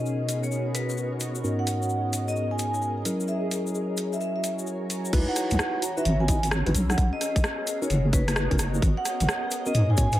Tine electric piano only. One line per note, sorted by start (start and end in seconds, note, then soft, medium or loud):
0.00 1.42 B2 medium
0.00 1.42 C#4 medium
0.00 1.42 D#4 medium
0.00 1.42 F#4 medium
0.00 1.42 A#4 medium
1.44 3.04 G#2 medium
1.44 3.03 B3 medium
1.44 3.04 C#4 medium
1.44 3.04 D#4 medium
1.44 3.04 F#4 medium
1.44 3.03 A#4 medium
3.05 5.11 F#3 medium
3.05 5.11 C#4 medium
3.05 5.11 E4 medium
3.05 5.11 G#4 medium
3.05 5.11 A#4 medium
5.13 5.82 D#4 loud
5.13 5.82 E4 medium
5.13 5.82 F#4 medium
5.13 5.82 B4 loud
5.97 6.02 D#4 medium
5.97 6.02 E4 medium
5.97 6.02 F#4 medium
5.97 6.02 B4 loud
6.28 6.38 D#4 medium
6.28 6.38 E4 medium
6.28 6.38 F#4 medium
6.28 6.38 D#5 medium
6.67 6.72 D#4 loud
6.67 6.72 E4 medium
6.67 6.72 F#4 medium
6.67 6.72 B4 loud
7.82 7.87 C#4 medium
7.82 7.87 D#4 medium
7.82 7.87 F#4 medium
7.82 7.87 A#4 loud
8.13 8.22 C#4 medium
8.13 8.22 D#4 medium
8.13 8.22 F#4 medium
8.13 8.22 C#5 medium
8.51 8.56 C#4 loud
8.51 8.56 D#4 medium
8.51 8.56 F#4 medium
8.51 8.56 A#4 loud
9.66 9.71 B3 medium
9.66 9.71 C#4 medium
9.66 9.71 F#4 medium
9.66 9.71 A#4 loud
9.98 10.07 B3 medium
9.98 10.07 C#4 medium
9.98 10.07 F#4 medium
9.98 10.07 C#5 medium